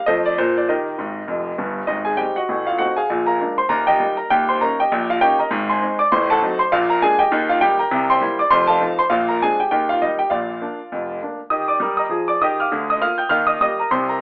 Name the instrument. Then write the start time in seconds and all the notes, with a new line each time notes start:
grand piano
0.06 F2 F3 A3 C4 A4 C5 D#5
0.25 D5
0.38 A#2 F3 A#3 C5
0.57 D5
0.69 D#3 G4 A#4 D#5
0.98 G#1 G#2
1.27 F1 F2
1.58 G1 G2
1.87 G#1 G#2 D#4 D#5
2.05 G#4 G#5
2.17 G3 C4 D#4 G4 G5
2.36 F#4 D#5 F#5
2.49 A1 A2
2.66 F4 F5
2.78 A3 C4 D#4 F#4 F#5
2.96 G#4 F5 G#5
3.10 A#1 A#2
3.26 A#4 F5 A#5
3.40 G#3 A#3 D4
3.58 C5 C6
3.69 D#1 D#2 A#4 A#5
3.87 G4 D#5 G5
4.00 G3 A#3 D#4
4.17 A#4 A#5
4.30 D#1 D#2 G4 G5
4.49 C5 C6
4.61 A#3 C#4 D#4 A#4 A#5
4.80 G4 D#5 G5
4.91 A#1 A#2
5.10 F4 F5
5.21 A#3 C#4 D#4 G4 G5
5.39 A#4 D#5 A#5
5.51 G#1 G#2
5.69 C5 G#5 C6
5.82 G#3 C4 D#4
5.99 D5 D6
6.12 A1 A2 C5 C6
6.30 A4 F#5 A5
6.42 F#3 C4 D#4
6.59 C5 C6
6.72 A#1 A#2 F4 F5
6.90 A#4 A#5
7.02 G#3 A#3 D4 G#4 G#5
7.19 G4 D#5 G5
7.32 D#2 D#3
7.49 F4 F5
7.61 G3 A#3 D#4 G4 G5
7.79 A#4 G5 A#5
7.91 C2 C3
8.10 C5 G5 C6
8.22 G3 A#3 E4
8.39 D5 D6
8.51 F1 F2 C5 C6
8.68 A4 F5 A5
8.80 F3 C4 D#4
8.99 C5 C6
9.10 A#1 A#2 F4 F5
9.29 A#4 A#5
9.42 G#3 C4 D4 G#4 G#5
9.60 G4 G5
9.71 D#2 D#3 G4 G5
9.89 F4 F5
10.02 G3 A#3 D#4 D#5
10.19 G4 G5
10.30 A#1 A#2 F4 D5 F5
10.62 A#3 D4
10.92 F1 F2
11.22 A#3 D4
11.50 D#3 G4 D#5 D#6
11.68 D5 D6
11.80 G3 A#4
11.97 D#5 A#5 D#6
12.09 F3 G#4
12.28 D5 D6
12.42 D#3 G4 D#5 D#6
12.60 F5 D6 F6
12.72 D2 D3
12.90 D#5 D#6
13.01 A#3 F4 F5 F6
13.18 G5 G6
13.29 D#2 D#3 F5 F6
13.47 D#5 D#6
13.61 G3 A#3 G4 D#5 D#6
13.80 A#4 A#5
13.91 C2 C3 C5 C6
14.09 A#4 A#5